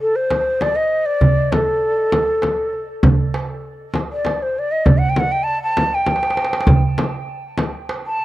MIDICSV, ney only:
0, 0, Header, 1, 2, 480
1, 0, Start_track
1, 0, Tempo, 606673
1, 963, Time_signature, 6, 3, 24, 8
1, 6526, End_track
2, 0, Start_track
2, 0, Title_t, "Ney"
2, 0, Program_c, 0, 77
2, 9, Note_on_c, 0, 69, 83
2, 124, Note_on_c, 0, 72, 83
2, 135, Note_off_c, 0, 69, 0
2, 489, Note_on_c, 0, 74, 92
2, 501, Note_off_c, 0, 72, 0
2, 599, Note_on_c, 0, 75, 87
2, 610, Note_off_c, 0, 74, 0
2, 836, Note_on_c, 0, 74, 97
2, 848, Note_off_c, 0, 75, 0
2, 1207, Note_on_c, 0, 69, 81
2, 1219, Note_off_c, 0, 74, 0
2, 2220, Note_off_c, 0, 69, 0
2, 3258, Note_on_c, 0, 74, 73
2, 3500, Note_on_c, 0, 72, 69
2, 3512, Note_off_c, 0, 74, 0
2, 3630, Note_on_c, 0, 74, 77
2, 3641, Note_off_c, 0, 72, 0
2, 3729, Note_on_c, 0, 75, 79
2, 3741, Note_off_c, 0, 74, 0
2, 3838, Note_on_c, 0, 74, 82
2, 3850, Note_off_c, 0, 75, 0
2, 3939, Note_on_c, 0, 78, 91
2, 3950, Note_off_c, 0, 74, 0
2, 4031, Note_on_c, 0, 79, 86
2, 4042, Note_off_c, 0, 78, 0
2, 4107, Note_on_c, 0, 78, 91
2, 4119, Note_off_c, 0, 79, 0
2, 4207, Note_on_c, 0, 79, 87
2, 4219, Note_off_c, 0, 78, 0
2, 4299, Note_on_c, 0, 81, 95
2, 4311, Note_off_c, 0, 79, 0
2, 4445, Note_off_c, 0, 81, 0
2, 4455, Note_on_c, 0, 81, 91
2, 4702, Note_on_c, 0, 79, 77
2, 4714, Note_off_c, 0, 81, 0
2, 5390, Note_off_c, 0, 79, 0
2, 6380, Note_on_c, 0, 81, 93
2, 6526, Note_off_c, 0, 81, 0
2, 6526, End_track
0, 0, End_of_file